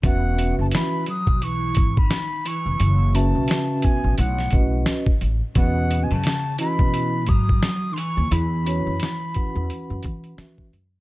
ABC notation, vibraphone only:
X:1
M:4/4
L:1/8
Q:"Swing 16ths" 1/4=87
K:E
V:1 name="Vibraphone"
[CFBe]3 z4 z | z [CFBe]3 z [CFBd] z2 | [CFBd] z2 [CFBd] z4 | z [CFBc] z [CFBf]3 [CFBe] z |]